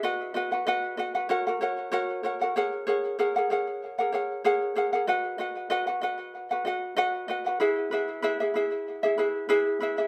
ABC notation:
X:1
M:4/4
L:1/16
Q:"Swing 16ths" 1/4=95
K:F#mix
V:1 name="Ukulele"
[FBdf]2 [FBdf] [FBf] [FBdf]2 [FBdf] [FBf] [FAcf] [FAf] [FAcf]2 [FAcf]2 [FAcf] [FAf] | [GAcf]2 [GAcf]2 [GAcf] [GAf] [GAcf]3 [GAf] [GAcf]2 [GAcf]2 [GAcf] [GAf] | [FBdf]2 [FBdf]2 [FBdf] [FBf] [FBdf]3 [FBf] [FBdf]2 [FBdf]2 [FBdf] [FBf] | [EGBe]2 [EGBe]2 [EGBe] [EGe] [EGBe]3 [EGe] [EGBe]2 [EGBe]2 [EGBe] [EGe] |]